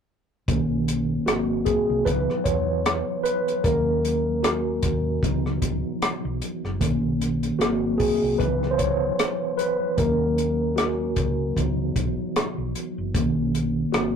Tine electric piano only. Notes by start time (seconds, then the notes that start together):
0.48 D#3 A#3 C#4
1.26 F#3 A#3 C4 F#4
1.65 G#4
2.05 E3 F#3 B3 D#4 B4
2.44 C#5
3.24 B4
3.64 F#3 A#3 C#4 A#4
4.43 F#4
5.22 E3 F#3 B3 D#4
6.80 D#3 A#3 C#4
7.59 F#3 A#3 C4 F#4
7.98 G#4
8.38 E3 F#3 B3 D#4 B4
8.71 C5
8.78 C#5
9.57 B4
9.97 F#3 A#3 C#4 A#4
10.76 F#4
11.55 E3 F#3 B3 D#4
13.14 D#3 A#3 C#4
13.92 F#3 A#3 C4 F#4